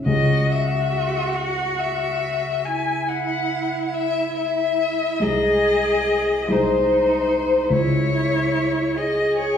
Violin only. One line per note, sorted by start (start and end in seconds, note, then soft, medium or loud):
0.06 0.54 D#5 medium
0.52 1.36 E5 medium
1.35 1.80 F#5 medium
1.79 2.67 E5 medium
2.65 3.09 G#5 medium
3.08 3.86 F#5 medium
3.86 3.96 F#5 medium
3.94 4.36 E5 medium
4.37 5.24 E5 medium
5.22 6.53 D#5 medium
6.51 7.74 C5 medium
7.72 8.98 C#5 medium
8.97 9.38 D#5 medium
9.38 9.57 C#5 medium